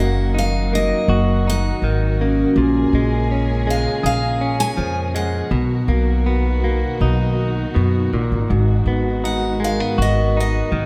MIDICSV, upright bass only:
0, 0, Header, 1, 2, 480
1, 0, Start_track
1, 0, Tempo, 740741
1, 1659, Time_signature, 4, 2, 24, 8
1, 7035, End_track
2, 0, Start_track
2, 0, Title_t, "Upright bass"
2, 0, Program_c, 0, 32
2, 0, Note_on_c, 0, 30, 78
2, 589, Note_off_c, 0, 30, 0
2, 701, Note_on_c, 0, 30, 90
2, 1104, Note_off_c, 0, 30, 0
2, 1178, Note_on_c, 0, 32, 75
2, 1580, Note_off_c, 0, 32, 0
2, 1657, Note_on_c, 0, 34, 94
2, 1859, Note_off_c, 0, 34, 0
2, 1898, Note_on_c, 0, 34, 83
2, 2502, Note_off_c, 0, 34, 0
2, 2616, Note_on_c, 0, 34, 87
2, 3019, Note_off_c, 0, 34, 0
2, 3097, Note_on_c, 0, 41, 77
2, 3499, Note_off_c, 0, 41, 0
2, 3570, Note_on_c, 0, 35, 89
2, 3774, Note_off_c, 0, 35, 0
2, 3810, Note_on_c, 0, 35, 85
2, 4418, Note_off_c, 0, 35, 0
2, 4540, Note_on_c, 0, 35, 86
2, 4945, Note_off_c, 0, 35, 0
2, 5027, Note_on_c, 0, 42, 80
2, 5227, Note_off_c, 0, 42, 0
2, 5268, Note_on_c, 0, 34, 77
2, 5374, Note_off_c, 0, 34, 0
2, 5389, Note_on_c, 0, 32, 74
2, 5495, Note_off_c, 0, 32, 0
2, 5510, Note_on_c, 0, 32, 89
2, 5710, Note_off_c, 0, 32, 0
2, 5739, Note_on_c, 0, 32, 80
2, 6347, Note_off_c, 0, 32, 0
2, 6469, Note_on_c, 0, 32, 90
2, 6872, Note_off_c, 0, 32, 0
2, 6946, Note_on_c, 0, 32, 81
2, 7035, Note_off_c, 0, 32, 0
2, 7035, End_track
0, 0, End_of_file